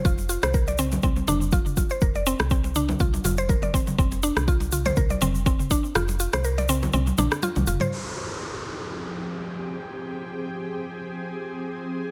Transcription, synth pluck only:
0.05 0.12 F4 loud
0.29 0.42 F4 medium
0.43 0.49 C5 loud
0.54 0.66 A#4 medium
0.68 0.78 D5 medium
0.79 0.86 C4 loud
1.03 1.15 C4 loud
1.28 1.40 D4 loud
1.53 1.60 F4 loud
1.77 1.90 F4 medium
1.91 1.97 C5 medium
2.02 2.14 A#4 medium
2.15 2.25 D5 medium
2.27 2.34 C4 loud
2.51 2.63 C4 loud
2.76 2.88 D4 loud
3.00 3.08 F4 loud
3.25 3.38 F4 medium
3.38 3.44 C5 loud
3.49 3.61 A#4 medium
3.63 3.73 D5 medium
3.74 3.81 C4 loud
3.98 4.11 C4 loud
4.23 4.35 D4 loud
4.48 4.55 F4 loud
4.72 4.85 F4 medium
4.86 4.92 C5 loud
4.97 5.09 A#4 medium
5.10 5.20 D5 medium
5.22 5.29 C4 loud
5.46 5.58 C4 loud
5.71 5.83 D4 loud
5.95 6.02 F4 loud
6.20 6.33 F4 medium
6.33 6.39 C5 loud
6.44 6.57 A#4 medium
6.58 6.68 D5 medium
6.69 6.76 C4 loud
6.93 7.06 C4 loud
7.18 7.30 D4 loud
7.43 7.50 F4 loud
7.67 7.80 F4 medium
7.81 7.87 C5 medium

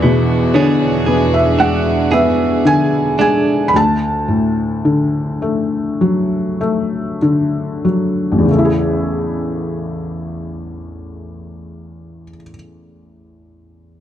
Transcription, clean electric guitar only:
0.00 0.53 B3 soft
0.00 0.55 G#4 medium
0.54 3.84 B3 soft
0.54 1.57 D4 medium
0.54 1.05 G#4 medium
1.06 2.10 G#4 medium
1.58 3.18 D4 medium
2.12 3.84 G#4 medium
3.19 3.84 D4 medium

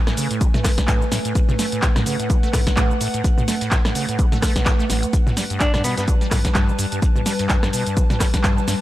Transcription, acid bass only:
0.07 0.16 A2 medium
0.17 0.28 C#3 loud
0.31 0.42 A2 medium
0.41 0.48 A3 medium
0.54 0.60 A3 loud
0.64 0.72 A3 medium
0.78 0.81 D3 medium
0.88 1.03 A2 medium
1.01 1.05 A3 medium
1.12 1.19 A2 loud
1.25 1.34 A2 medium
1.35 1.40 A2 medium
1.49 1.54 C#3 medium
1.59 1.66 A3 medium
1.72 1.81 A2 medium
1.96 2.04 A2 medium
2.06 2.17 C#3 loud
2.20 2.31 A2 medium
2.30 2.37 A3 medium
2.43 2.49 A3 loud
2.53 2.61 A3 medium
2.67 2.70 D3 medium
2.77 2.92 A2 medium
2.90 2.94 A3 medium
3.01 3.08 A2 loud
3.14 3.23 A2 medium
3.24 3.29 A2 medium
3.38 3.43 C#3 medium
3.48 3.55 A3 medium
3.61 3.70 A2 medium
3.72 3.79 A2 medium
3.85 3.93 A2 medium
3.95 4.06 C#3 loud
4.09 4.20 A2 medium
4.19 4.26 A3 medium
4.32 4.38 A3 loud
4.42 4.53 A3 loud
4.56 4.68 B2 medium
4.66 4.73 A2 loud
4.79 4.85 A3 medium
4.90 5.05 A1 loud
5.03 5.06 A2 medium
5.13 5.18 G2 medium
5.27 5.32 B2 medium
5.37 5.44 G3 medium
5.50 5.59 G2 medium
5.74 5.82 G2 medium
5.84 5.95 B2 loud
5.98 6.09 G2 medium
6.08 6.15 G3 medium
6.21 6.27 G3 loud
6.31 6.39 G3 medium
6.45 6.48 C#3 medium
6.55 6.70 G2 medium
6.68 6.72 G3 medium
6.79 6.86 G2 loud
6.92 7.01 G2 medium
7.16 7.21 B2 medium
7.26 7.33 G3 medium
7.39 7.48 G2 medium
7.63 7.71 G2 medium
7.73 7.84 B2 loud
7.87 7.98 G2 medium
7.97 8.04 G3 medium
8.10 8.16 G3 loud
8.20 8.28 G3 medium
8.34 8.37 C#3 medium
8.44 8.59 G2 medium
8.57 8.61 G3 medium
8.68 8.75 G2 loud

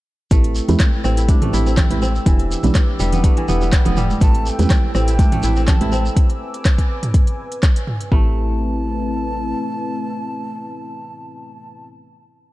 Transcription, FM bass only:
0.31 0.60 A1 loud
0.69 0.76 E2 loud
1.05 1.34 A1 medium
1.53 1.82 A1 medium
1.91 2.19 A1 medium
2.26 2.56 E1 loud
2.64 2.71 B1 loud
3.00 3.29 E1 medium
3.48 3.78 E1 medium
3.86 4.14 E1 medium
4.21 4.51 A1 loud
4.59 4.66 E2 loud
4.95 5.24 A1 medium
5.43 5.73 A1 medium
5.81 6.10 A1 medium
8.12 9.54 A1 loud

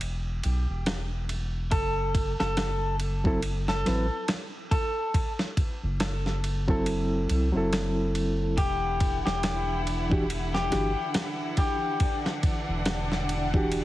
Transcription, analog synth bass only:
0.00 0.41 E1 medium
0.45 0.66 B1 medium
0.70 1.69 E1 medium
1.72 2.35 F#1 medium
2.41 3.83 F#1 medium
3.88 4.09 A1 medium
5.83 7.26 F#1 medium
7.30 7.52 C2 medium
7.55 8.60 F#1 medium
8.58 9.21 E1 medium
9.26 10.69 E1 medium
10.73 10.95 G1 medium
12.69 13.84 E1 medium

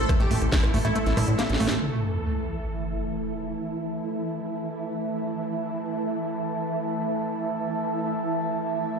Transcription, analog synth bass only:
0.20 0.28 A1 medium
0.31 0.38 A1 loud
0.42 0.49 A1 loud
0.63 0.71 A1 medium
0.74 0.82 A1 loud
0.85 0.92 A1 medium
1.06 1.14 A1 medium
1.17 1.25 A2 loud
1.28 1.35 A2 medium
1.49 1.57 A1 medium
1.60 1.68 A1 loud
1.71 1.79 A1 medium

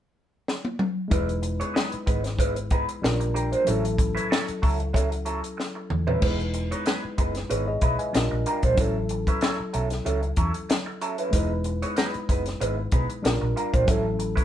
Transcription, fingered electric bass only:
1.12 1.62 E1 loud
1.94 muted fingered electric bass stroke soft
2.08 2.85 G#1 medium
3.04 3.54 A#1 medium
3.68 4.18 A1 loud
4.49 muted fingered electric bass stroke soft
4.64 5.40 C#2 medium
5.91 6.16 E2 medium
6.23 6.72 E1 loud
7.04 muted fingered electric bass stroke soft
7.19 7.43 F#1 medium
7.51 7.75 G#1 medium
7.82 7.96 B1 medium
8.15 8.28 A#1 medium
8.32 8.43 A#1 medium
8.64 8.75 A#1 medium
8.78 9.28 A1 loud
9.60 muted fingered electric bass stroke soft
9.75 9.99 B1 medium
10.06 10.31 C#2 medium
10.38 10.51 E2 medium
11.33 11.83 E1 loud
12.15 muted fingered electric bass stroke soft
12.29 12.54 F#1 medium
12.61 12.86 G#1 medium
12.93 13.06 B1 medium
13.25 13.38 A#1 medium
13.42 13.53 A#1 medium
13.74 13.85 A#1 medium
13.88 14.38 A1 medium

